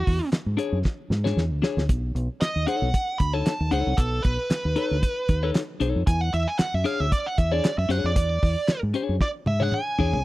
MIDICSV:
0, 0, Header, 1, 6, 480
1, 0, Start_track
1, 0, Tempo, 522193
1, 1740, Time_signature, 4, 2, 24, 8
1, 9416, End_track
2, 0, Start_track
2, 0, Title_t, "Lead electric guitar"
2, 0, Program_c, 0, 29
2, 0, Note_on_c, 0, 66, 77
2, 268, Note_off_c, 0, 66, 0
2, 2216, Note_on_c, 0, 75, 92
2, 2441, Note_off_c, 0, 75, 0
2, 2459, Note_on_c, 0, 78, 94
2, 2926, Note_on_c, 0, 83, 96
2, 2954, Note_off_c, 0, 78, 0
2, 3066, Note_off_c, 0, 83, 0
2, 3066, Note_on_c, 0, 81, 123
2, 3412, Note_on_c, 0, 78, 84
2, 3427, Note_off_c, 0, 81, 0
2, 3650, Note_on_c, 0, 69, 86
2, 3664, Note_off_c, 0, 78, 0
2, 3878, Note_off_c, 0, 69, 0
2, 3884, Note_on_c, 0, 71, 73
2, 5055, Note_off_c, 0, 71, 0
2, 5579, Note_on_c, 0, 80, 100
2, 5707, Note_off_c, 0, 80, 0
2, 5707, Note_on_c, 0, 78, 100
2, 5820, Note_off_c, 0, 78, 0
2, 5824, Note_on_c, 0, 76, 95
2, 5952, Note_on_c, 0, 80, 102
2, 5960, Note_off_c, 0, 76, 0
2, 6051, Note_off_c, 0, 80, 0
2, 6055, Note_on_c, 0, 78, 102
2, 6199, Note_off_c, 0, 78, 0
2, 6199, Note_on_c, 0, 76, 80
2, 6302, Note_off_c, 0, 76, 0
2, 6302, Note_on_c, 0, 77, 92
2, 6436, Note_off_c, 0, 77, 0
2, 6436, Note_on_c, 0, 76, 94
2, 6544, Note_off_c, 0, 76, 0
2, 6545, Note_on_c, 0, 74, 88
2, 6677, Note_on_c, 0, 78, 95
2, 6681, Note_off_c, 0, 74, 0
2, 6782, Note_off_c, 0, 78, 0
2, 6782, Note_on_c, 0, 76, 89
2, 6915, Note_off_c, 0, 76, 0
2, 6915, Note_on_c, 0, 74, 95
2, 7153, Note_off_c, 0, 74, 0
2, 7156, Note_on_c, 0, 76, 90
2, 7270, Note_off_c, 0, 76, 0
2, 7270, Note_on_c, 0, 78, 83
2, 7404, Note_off_c, 0, 78, 0
2, 7406, Note_on_c, 0, 74, 80
2, 8084, Note_off_c, 0, 74, 0
2, 8470, Note_on_c, 0, 74, 86
2, 8534, Note_off_c, 0, 74, 0
2, 8707, Note_on_c, 0, 76, 79
2, 8846, Note_off_c, 0, 76, 0
2, 8846, Note_on_c, 0, 78, 113
2, 8950, Note_off_c, 0, 78, 0
2, 8953, Note_on_c, 0, 80, 105
2, 9395, Note_off_c, 0, 80, 0
2, 9416, End_track
3, 0, Start_track
3, 0, Title_t, "Clean electric guitar"
3, 0, Program_c, 1, 27
3, 526, Note_on_c, 1, 62, 82
3, 537, Note_on_c, 1, 68, 89
3, 546, Note_on_c, 1, 73, 102
3, 714, Note_off_c, 1, 62, 0
3, 719, Note_off_c, 1, 68, 0
3, 724, Note_off_c, 1, 73, 0
3, 1142, Note_on_c, 1, 73, 69
3, 1150, Note_on_c, 1, 68, 79
3, 1157, Note_on_c, 1, 62, 60
3, 1313, Note_off_c, 1, 73, 0
3, 1317, Note_off_c, 1, 68, 0
3, 1321, Note_off_c, 1, 62, 0
3, 1490, Note_on_c, 1, 62, 78
3, 1502, Note_on_c, 1, 68, 87
3, 1507, Note_on_c, 1, 73, 99
3, 1676, Note_off_c, 1, 62, 0
3, 1682, Note_off_c, 1, 68, 0
3, 1685, Note_off_c, 1, 73, 0
3, 2454, Note_on_c, 1, 63, 71
3, 2464, Note_on_c, 1, 69, 82
3, 2468, Note_on_c, 1, 73, 89
3, 2646, Note_off_c, 1, 63, 0
3, 2651, Note_off_c, 1, 69, 0
3, 2654, Note_off_c, 1, 73, 0
3, 3066, Note_on_c, 1, 73, 85
3, 3073, Note_on_c, 1, 69, 77
3, 3082, Note_on_c, 1, 63, 78
3, 3235, Note_off_c, 1, 73, 0
3, 3239, Note_off_c, 1, 69, 0
3, 3243, Note_off_c, 1, 63, 0
3, 3412, Note_on_c, 1, 63, 96
3, 3423, Note_on_c, 1, 69, 91
3, 3429, Note_on_c, 1, 73, 101
3, 3606, Note_off_c, 1, 63, 0
3, 3611, Note_off_c, 1, 69, 0
3, 3614, Note_off_c, 1, 73, 0
3, 4374, Note_on_c, 1, 63, 80
3, 4383, Note_on_c, 1, 69, 87
3, 4394, Note_on_c, 1, 73, 86
3, 4558, Note_off_c, 1, 63, 0
3, 4562, Note_off_c, 1, 69, 0
3, 4568, Note_off_c, 1, 73, 0
3, 4992, Note_on_c, 1, 73, 84
3, 4999, Note_on_c, 1, 69, 80
3, 5009, Note_on_c, 1, 63, 74
3, 5158, Note_off_c, 1, 73, 0
3, 5162, Note_off_c, 1, 69, 0
3, 5167, Note_off_c, 1, 63, 0
3, 5334, Note_on_c, 1, 63, 100
3, 5343, Note_on_c, 1, 69, 82
3, 5345, Note_on_c, 1, 73, 100
3, 5526, Note_off_c, 1, 63, 0
3, 5531, Note_off_c, 1, 69, 0
3, 5532, Note_off_c, 1, 73, 0
3, 6290, Note_on_c, 1, 62, 79
3, 6297, Note_on_c, 1, 68, 87
3, 6303, Note_on_c, 1, 73, 84
3, 6476, Note_off_c, 1, 62, 0
3, 6480, Note_off_c, 1, 68, 0
3, 6483, Note_off_c, 1, 73, 0
3, 6910, Note_on_c, 1, 73, 92
3, 6916, Note_on_c, 1, 68, 84
3, 6924, Note_on_c, 1, 62, 79
3, 7077, Note_off_c, 1, 73, 0
3, 7081, Note_off_c, 1, 68, 0
3, 7085, Note_off_c, 1, 62, 0
3, 7250, Note_on_c, 1, 62, 85
3, 7261, Note_on_c, 1, 68, 100
3, 7266, Note_on_c, 1, 73, 105
3, 7445, Note_off_c, 1, 62, 0
3, 7450, Note_off_c, 1, 68, 0
3, 7453, Note_off_c, 1, 73, 0
3, 8217, Note_on_c, 1, 62, 73
3, 8227, Note_on_c, 1, 68, 83
3, 8233, Note_on_c, 1, 73, 89
3, 8409, Note_off_c, 1, 62, 0
3, 8414, Note_off_c, 1, 68, 0
3, 8417, Note_off_c, 1, 73, 0
3, 8824, Note_on_c, 1, 73, 101
3, 8836, Note_on_c, 1, 68, 75
3, 8843, Note_on_c, 1, 62, 75
3, 8996, Note_off_c, 1, 73, 0
3, 9002, Note_off_c, 1, 68, 0
3, 9005, Note_off_c, 1, 62, 0
3, 9179, Note_on_c, 1, 62, 84
3, 9190, Note_on_c, 1, 68, 82
3, 9195, Note_on_c, 1, 73, 83
3, 9362, Note_off_c, 1, 62, 0
3, 9367, Note_off_c, 1, 68, 0
3, 9370, Note_off_c, 1, 73, 0
3, 9416, End_track
4, 0, Start_track
4, 0, Title_t, "Fingered electric bass"
4, 0, Program_c, 2, 33
4, 66, Note_on_c, 2, 40, 94
4, 174, Note_off_c, 2, 40, 0
4, 425, Note_on_c, 2, 44, 79
4, 516, Note_off_c, 2, 44, 0
4, 665, Note_on_c, 2, 42, 83
4, 756, Note_off_c, 2, 42, 0
4, 1011, Note_on_c, 2, 44, 94
4, 1212, Note_off_c, 2, 44, 0
4, 1253, Note_on_c, 2, 40, 85
4, 1384, Note_off_c, 2, 40, 0
4, 1384, Note_on_c, 2, 38, 85
4, 1475, Note_off_c, 2, 38, 0
4, 1625, Note_on_c, 2, 38, 86
4, 1716, Note_off_c, 2, 38, 0
4, 1737, Note_on_c, 2, 35, 102
4, 1936, Note_off_c, 2, 35, 0
4, 1974, Note_on_c, 2, 35, 95
4, 2088, Note_off_c, 2, 35, 0
4, 2350, Note_on_c, 2, 39, 77
4, 2439, Note_off_c, 2, 39, 0
4, 2590, Note_on_c, 2, 35, 103
4, 2679, Note_off_c, 2, 35, 0
4, 2941, Note_on_c, 2, 38, 90
4, 3138, Note_off_c, 2, 38, 0
4, 3313, Note_on_c, 2, 39, 96
4, 3401, Note_off_c, 2, 39, 0
4, 3416, Note_on_c, 2, 37, 85
4, 3529, Note_off_c, 2, 37, 0
4, 3553, Note_on_c, 2, 36, 102
4, 3641, Note_off_c, 2, 36, 0
4, 3655, Note_on_c, 2, 35, 97
4, 3855, Note_off_c, 2, 35, 0
4, 3903, Note_on_c, 2, 35, 96
4, 4012, Note_off_c, 2, 35, 0
4, 4274, Note_on_c, 2, 39, 87
4, 4361, Note_off_c, 2, 39, 0
4, 4516, Note_on_c, 2, 38, 90
4, 4602, Note_off_c, 2, 38, 0
4, 4860, Note_on_c, 2, 39, 93
4, 5058, Note_off_c, 2, 39, 0
4, 5337, Note_on_c, 2, 35, 79
4, 5449, Note_off_c, 2, 35, 0
4, 5475, Note_on_c, 2, 41, 90
4, 5562, Note_off_c, 2, 41, 0
4, 5581, Note_on_c, 2, 40, 109
4, 5778, Note_off_c, 2, 40, 0
4, 5823, Note_on_c, 2, 40, 103
4, 5933, Note_off_c, 2, 40, 0
4, 6195, Note_on_c, 2, 42, 86
4, 6282, Note_off_c, 2, 42, 0
4, 6435, Note_on_c, 2, 38, 90
4, 6522, Note_off_c, 2, 38, 0
4, 6785, Note_on_c, 2, 40, 89
4, 6981, Note_off_c, 2, 40, 0
4, 7150, Note_on_c, 2, 42, 99
4, 7239, Note_off_c, 2, 42, 0
4, 7252, Note_on_c, 2, 42, 96
4, 7366, Note_off_c, 2, 42, 0
4, 7390, Note_on_c, 2, 41, 96
4, 7498, Note_off_c, 2, 41, 0
4, 7498, Note_on_c, 2, 40, 98
4, 7697, Note_off_c, 2, 40, 0
4, 7747, Note_on_c, 2, 40, 94
4, 7856, Note_off_c, 2, 40, 0
4, 8116, Note_on_c, 2, 44, 90
4, 8203, Note_off_c, 2, 44, 0
4, 8354, Note_on_c, 2, 42, 84
4, 8442, Note_off_c, 2, 42, 0
4, 8700, Note_on_c, 2, 44, 86
4, 8899, Note_off_c, 2, 44, 0
4, 9189, Note_on_c, 2, 40, 83
4, 9298, Note_off_c, 2, 40, 0
4, 9319, Note_on_c, 2, 36, 91
4, 9405, Note_off_c, 2, 36, 0
4, 9416, End_track
5, 0, Start_track
5, 0, Title_t, "Muted fingered electric bass strokes"
5, 293, Note_on_c, 9, 29, 45
5, 385, Note_off_c, 9, 29, 0
5, 2217, Note_on_c, 9, 29, 44
5, 2309, Note_off_c, 9, 29, 0
5, 4133, Note_on_c, 9, 29, 49
5, 4225, Note_off_c, 9, 29, 0
5, 6067, Note_on_c, 9, 29, 48
5, 6159, Note_off_c, 9, 29, 0
5, 7984, Note_on_c, 9, 29, 48
5, 8076, Note_off_c, 9, 29, 0
5, 9416, End_track
6, 0, Start_track
6, 0, Title_t, "Drums"
6, 66, Note_on_c, 9, 46, 76
6, 67, Note_on_c, 9, 36, 101
6, 158, Note_off_c, 9, 36, 0
6, 158, Note_off_c, 9, 46, 0
6, 300, Note_on_c, 9, 42, 75
6, 301, Note_on_c, 9, 38, 113
6, 301, Note_on_c, 9, 39, 80
6, 392, Note_off_c, 9, 42, 0
6, 393, Note_off_c, 9, 38, 0
6, 393, Note_off_c, 9, 39, 0
6, 538, Note_on_c, 9, 42, 68
6, 630, Note_off_c, 9, 42, 0
6, 784, Note_on_c, 9, 36, 84
6, 784, Note_on_c, 9, 38, 59
6, 875, Note_off_c, 9, 36, 0
6, 875, Note_off_c, 9, 38, 0
6, 1022, Note_on_c, 9, 38, 79
6, 1114, Note_off_c, 9, 38, 0
6, 1156, Note_on_c, 9, 38, 66
6, 1248, Note_off_c, 9, 38, 0
6, 1265, Note_on_c, 9, 38, 75
6, 1357, Note_off_c, 9, 38, 0
6, 1501, Note_on_c, 9, 38, 97
6, 1593, Note_off_c, 9, 38, 0
6, 1638, Note_on_c, 9, 38, 81
6, 1730, Note_off_c, 9, 38, 0
6, 1739, Note_on_c, 9, 42, 107
6, 1740, Note_on_c, 9, 36, 110
6, 1831, Note_off_c, 9, 42, 0
6, 1832, Note_off_c, 9, 36, 0
6, 1985, Note_on_c, 9, 42, 76
6, 2077, Note_off_c, 9, 42, 0
6, 2221, Note_on_c, 9, 42, 81
6, 2222, Note_on_c, 9, 38, 98
6, 2222, Note_on_c, 9, 39, 92
6, 2313, Note_off_c, 9, 42, 0
6, 2314, Note_off_c, 9, 38, 0
6, 2314, Note_off_c, 9, 39, 0
6, 2460, Note_on_c, 9, 42, 81
6, 2552, Note_off_c, 9, 42, 0
6, 2701, Note_on_c, 9, 42, 88
6, 2703, Note_on_c, 9, 36, 93
6, 2793, Note_off_c, 9, 42, 0
6, 2795, Note_off_c, 9, 36, 0
6, 2939, Note_on_c, 9, 42, 67
6, 2942, Note_on_c, 9, 36, 97
6, 3031, Note_off_c, 9, 42, 0
6, 3034, Note_off_c, 9, 36, 0
6, 3178, Note_on_c, 9, 42, 95
6, 3186, Note_on_c, 9, 38, 115
6, 3186, Note_on_c, 9, 39, 92
6, 3270, Note_off_c, 9, 42, 0
6, 3278, Note_off_c, 9, 38, 0
6, 3278, Note_off_c, 9, 39, 0
6, 3417, Note_on_c, 9, 42, 67
6, 3509, Note_off_c, 9, 42, 0
6, 3656, Note_on_c, 9, 42, 115
6, 3658, Note_on_c, 9, 36, 117
6, 3747, Note_off_c, 9, 42, 0
6, 3750, Note_off_c, 9, 36, 0
6, 3899, Note_on_c, 9, 42, 67
6, 3905, Note_on_c, 9, 36, 107
6, 3991, Note_off_c, 9, 42, 0
6, 3997, Note_off_c, 9, 36, 0
6, 4142, Note_on_c, 9, 42, 91
6, 4143, Note_on_c, 9, 38, 112
6, 4143, Note_on_c, 9, 39, 91
6, 4234, Note_off_c, 9, 42, 0
6, 4235, Note_off_c, 9, 38, 0
6, 4235, Note_off_c, 9, 39, 0
6, 4376, Note_on_c, 9, 42, 74
6, 4468, Note_off_c, 9, 42, 0
6, 4621, Note_on_c, 9, 42, 86
6, 4622, Note_on_c, 9, 36, 91
6, 4713, Note_off_c, 9, 42, 0
6, 4714, Note_off_c, 9, 36, 0
6, 4859, Note_on_c, 9, 42, 66
6, 4862, Note_on_c, 9, 36, 97
6, 4951, Note_off_c, 9, 42, 0
6, 4954, Note_off_c, 9, 36, 0
6, 5097, Note_on_c, 9, 42, 83
6, 5105, Note_on_c, 9, 38, 118
6, 5105, Note_on_c, 9, 39, 85
6, 5189, Note_off_c, 9, 42, 0
6, 5197, Note_off_c, 9, 38, 0
6, 5197, Note_off_c, 9, 39, 0
6, 5338, Note_on_c, 9, 42, 77
6, 5430, Note_off_c, 9, 42, 0
6, 5581, Note_on_c, 9, 36, 121
6, 5581, Note_on_c, 9, 42, 115
6, 5673, Note_off_c, 9, 36, 0
6, 5673, Note_off_c, 9, 42, 0
6, 5824, Note_on_c, 9, 42, 70
6, 5916, Note_off_c, 9, 42, 0
6, 6058, Note_on_c, 9, 42, 90
6, 6059, Note_on_c, 9, 38, 110
6, 6059, Note_on_c, 9, 39, 96
6, 6150, Note_off_c, 9, 42, 0
6, 6151, Note_off_c, 9, 38, 0
6, 6151, Note_off_c, 9, 39, 0
6, 6298, Note_on_c, 9, 42, 76
6, 6390, Note_off_c, 9, 42, 0
6, 6545, Note_on_c, 9, 36, 95
6, 6546, Note_on_c, 9, 42, 92
6, 6637, Note_off_c, 9, 36, 0
6, 6638, Note_off_c, 9, 42, 0
6, 6785, Note_on_c, 9, 42, 70
6, 6786, Note_on_c, 9, 36, 102
6, 6877, Note_off_c, 9, 42, 0
6, 6878, Note_off_c, 9, 36, 0
6, 7022, Note_on_c, 9, 42, 93
6, 7030, Note_on_c, 9, 38, 111
6, 7030, Note_on_c, 9, 39, 94
6, 7114, Note_off_c, 9, 42, 0
6, 7122, Note_off_c, 9, 38, 0
6, 7122, Note_off_c, 9, 39, 0
6, 7264, Note_on_c, 9, 42, 77
6, 7356, Note_off_c, 9, 42, 0
6, 7501, Note_on_c, 9, 36, 124
6, 7501, Note_on_c, 9, 42, 111
6, 7593, Note_off_c, 9, 36, 0
6, 7593, Note_off_c, 9, 42, 0
6, 7746, Note_on_c, 9, 46, 80
6, 7747, Note_on_c, 9, 36, 106
6, 7838, Note_off_c, 9, 46, 0
6, 7839, Note_off_c, 9, 36, 0
6, 7981, Note_on_c, 9, 42, 78
6, 7982, Note_on_c, 9, 38, 117
6, 7982, Note_on_c, 9, 39, 84
6, 8073, Note_off_c, 9, 42, 0
6, 8074, Note_off_c, 9, 38, 0
6, 8074, Note_off_c, 9, 39, 0
6, 8217, Note_on_c, 9, 42, 74
6, 8309, Note_off_c, 9, 42, 0
6, 8462, Note_on_c, 9, 36, 92
6, 8462, Note_on_c, 9, 38, 60
6, 8554, Note_off_c, 9, 36, 0
6, 8554, Note_off_c, 9, 38, 0
6, 8697, Note_on_c, 9, 48, 85
6, 8789, Note_off_c, 9, 48, 0
6, 8831, Note_on_c, 9, 48, 68
6, 8923, Note_off_c, 9, 48, 0
6, 8934, Note_on_c, 9, 47, 77
6, 9026, Note_off_c, 9, 47, 0
6, 9179, Note_on_c, 9, 43, 96
6, 9271, Note_off_c, 9, 43, 0
6, 9316, Note_on_c, 9, 43, 91
6, 9408, Note_off_c, 9, 43, 0
6, 9416, End_track
0, 0, End_of_file